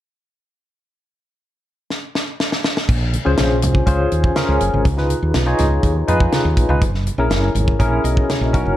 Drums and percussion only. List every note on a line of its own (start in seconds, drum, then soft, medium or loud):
1.90 snare medium
2.15 snare medium
2.40 snare medium
2.52 snare medium
2.64 snare medium
2.77 snare medium
2.89 kick loud
2.89 crash medium
2.89 muted conga soft
3.13 closed hi-hat medium
3.13 muted conga soft
3.38 snare loud
3.38 closed hi-hat medium
3.38 high conga medium
3.62 closed hi-hat medium
3.62 muted conga soft
3.62 low conga medium
3.75 kick medium
3.87 kick medium
3.87 closed hi-hat medium
3.87 muted conga soft
4.12 closed hi-hat medium
4.24 kick medium
4.36 snare loud
4.36 closed hi-hat medium
4.36 high conga medium
4.60 closed hi-hat medium
4.74 high conga medium
4.85 kick loud
4.85 closed hi-hat medium
4.85 muted conga soft
4.98 snare soft
5.10 closed hi-hat medium
5.10 muted conga soft
5.34 snare loud
5.34 closed hi-hat medium
5.34 high conga medium
5.58 snare soft
5.58 closed hi-hat medium
5.58 low conga medium
5.83 kick medium
5.83 closed hi-hat medium
5.83 muted conga soft
6.08 closed hi-hat medium
6.08 low conga medium
6.20 kick medium
6.33 snare loud
6.33 closed hi-hat medium
6.33 high conga medium
6.57 kick medium
6.57 closed hi-hat medium
6.70 high conga medium
6.82 kick loud
6.82 closed hi-hat medium
6.82 muted conga soft
6.94 snare soft
7.07 closed hi-hat medium
7.07 muted conga soft
7.31 snare loud
7.31 closed hi-hat medium
7.31 high conga medium
7.55 closed hi-hat medium
7.55 low conga medium
7.68 kick medium
7.80 kick medium
7.80 closed hi-hat medium
7.80 muted conga soft
8.05 closed hi-hat medium
8.17 kick medium
8.30 snare loud
8.30 closed hi-hat medium
8.30 high conga medium
8.54 kick medium
8.54 closed hi-hat medium
8.67 high conga medium